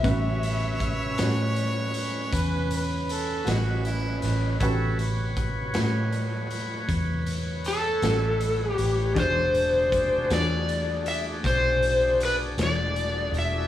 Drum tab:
HH |xxxxxxxxxxxx|xxxxxxxxxxxx|xxxxxxxxxxxx|
SD |---o-----o-o|---o-----o--|---o-----o--|
BD |o-o---o-----|o-o---o-----|o-o---o-----|